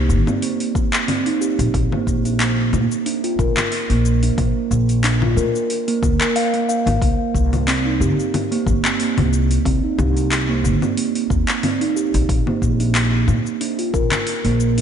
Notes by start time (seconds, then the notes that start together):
Already playing: C2 A#3
0.09 G1, cabasa
0.27 C4, low conga, cabasa
0.42 A#3, open hi-hat, cabasa
0.60 open hi-hat
0.75 D#2, kick, cabasa
0.93 clap, open hi-hat, cabasa
1.08 C4, open hi-hat, low conga, cabasa
1.26 D#4, open hi-hat
1.41 G4, cabasa
1.59 A#1, open hi-hat, cabasa
1.74 A#1, kick, open hi-hat, cabasa
1.92 A#3, low conga
2.07 A#1, kick, cabasa
2.25 D4, open hi-hat, cabasa
2.40 A#3, clap, open hi-hat, cabasa
2.73 A#2, low conga, cabasa
2.92 cabasa
3.06 D4, open hi-hat, cabasa
3.24 F4, open hi-hat
3.39 A#2 A#4, kick, cabasa
3.57 clap, open hi-hat, low conga, cabasa
3.72 open hi-hat, cabasa
3.90 A#1 A#3, open hi-hat
4.05 cabasa
4.23 D4, open hi-hat, cabasa
4.38 A#1 A#3, kick, open hi-hat, low conga, cabasa
4.71 A#1, cabasa
4.89 open hi-hat, cabasa
5.04 D4, clap, open hi-hat, cabasa
5.22 F4, low conga
5.37 A#2 A#4, cabasa
5.55 cabasa
5.70 open hi-hat, cabasa
5.88 A#3, open hi-hat
6.03 D2, kick, low conga, cabasa
6.21 A#4, clap, open hi-hat, cabasa
6.36 F5, open hi-hat, cabasa
6.54 A#3, open hi-hat
6.69 F5, cabasa
6.86 G#1, open hi-hat, low conga, cabasa
7.02 C2 A#3, kick, open hi-hat, cabasa
7.35 C2, kick, cabasa
7.53 open hi-hat, low conga, cabasa
7.68 C4, clap, open hi-hat, cabasa
7.85 D#4
8.00 G1 G4, cabasa
8.20 cabasa
8.34 open hi-hat, low conga, cabasa
8.52 A#3, open hi-hat
8.66 G1, kick, cabasa
8.85 C4, clap, open hi-hat, cabasa
9.00 A#3, open hi-hat, cabasa
9.17 C2, open hi-hat, low conga
9.33 cabasa
9.51 open hi-hat, cabasa
9.65 C2 C4, kick, open hi-hat, cabasa
9.83 D#4
9.98 C2 G4, low conga, cabasa
10.17 open hi-hat, cabasa
10.32 clap, open hi-hat, cabasa
10.49 A#3
10.64 G1, cabasa
10.82 C4, low conga, cabasa
10.97 A#3, open hi-hat, cabasa
11.15 open hi-hat
11.30 D#2, kick, cabasa
11.48 clap, open hi-hat, cabasa
11.63 C4, open hi-hat, low conga, cabasa
11.81 D#4, open hi-hat
11.96 G4, cabasa
12.14 A#1, open hi-hat, cabasa
12.29 A#1, kick, open hi-hat, cabasa
12.47 A#3, low conga
12.62 A#1, kick, cabasa
12.80 D4, open hi-hat, cabasa
12.95 A#3, clap, open hi-hat, cabasa
13.28 A#2, low conga, cabasa
13.46 cabasa
13.61 D4, open hi-hat, cabasa
13.79 F4, open hi-hat
13.94 A#2 A#4, kick, cabasa
14.12 clap, open hi-hat, low conga, cabasa
14.27 open hi-hat, cabasa
14.44 A#1 A#3, open hi-hat
14.60 cabasa
14.78 D4, open hi-hat, cabasa